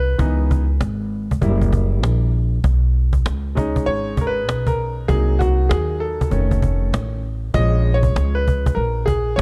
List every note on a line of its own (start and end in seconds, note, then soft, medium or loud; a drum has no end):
0.00 0.17 C2 medium
0.00 0.15 A#2 medium
0.00 0.15 G#3 medium
0.00 0.16 F4 medium
0.00 0.76 B4 medium
0.18 0.78 C#2 loud
0.18 0.63 E3 medium
0.18 0.63 B3 medium
0.18 0.63 D#4 medium
0.18 cajon bass loud
0.51 cajon bass loud
0.80 1.39 G#1 medium
0.80 cajon slap loud
1.31 cajon bass medium
1.41 2.03 F#1 medium
1.41 2.29 G3 medium
1.41 2.30 A#3 soft
1.41 2.30 E4 medium
1.41 cajon bass medium
1.41 cajon slap soft
1.61 cajon bass medium
1.73 cajon bass loud
2.03 2.61 A#1 loud
2.03 cajon slap loud
2.23 cajon slap soft
2.33 cajon slap soft
2.64 3.22 B1 loud
2.64 cajon bass loud
2.95 cajon slap soft
3.13 cajon bass loud
3.25 3.84 C#2 loud
3.25 cajon slap loud
3.55 5.05 G#3 medium
3.55 5.05 C#4 medium
3.55 5.05 D#4 medium
3.55 cajon bass loud
3.76 cajon bass medium
3.86 4.48 G#1 medium
3.86 4.22 C#5 loud
3.86 cajon slap soft
4.17 4.28 A#4 medium
4.17 cajon bass medium
4.27 4.69 B4 medium
4.48 5.06 B1 loud
4.48 cajon slap loud
4.67 5.10 A#4 medium
4.67 cajon bass medium
4.78 cajon slap soft
5.08 5.67 C2 loud
5.08 6.27 F#3 medium
5.08 6.28 A#3 medium
5.08 6.28 D#4 medium
5.08 5.40 G#4 loud
5.08 cajon bass loud
5.39 5.71 F#4 loud
5.39 cajon bass loud
5.69 6.33 D#2 loud
5.69 5.98 G#4 medium
5.69 cajon slap loud
6.00 6.89 A4 medium
6.21 cajon bass loud
6.30 6.90 F1 medium
6.30 7.19 D#3 medium
6.30 7.19 A3 soft
6.30 7.19 C#4 medium
6.30 cajon bass medium
6.30 cajon slap medium
6.51 cajon bass medium
6.62 cajon bass medium
6.93 7.51 A1 medium
6.93 cajon slap loud
7.24 cajon slap soft
7.54 8.12 A#1 loud
7.54 9.42 F3 medium
7.54 9.42 G#3 medium
7.54 9.42 C#4 medium
7.54 7.96 D#5 loud
7.54 cajon bass loud
7.86 cajon slap soft
7.94 8.33 C#5 loud
8.03 cajon bass loud
8.16 8.74 C#2 medium
8.16 cajon slap loud
8.35 8.77 B4 medium
8.48 cajon bass medium
8.66 cajon bass loud
8.75 9.35 A#1 medium
8.75 9.07 A#4 medium
8.75 cajon slap medium
9.06 9.38 G#4 medium
9.06 cajon bass medium
9.36 9.42 G#1 loud
9.36 9.42 C#5 loud
9.36 cajon slap loud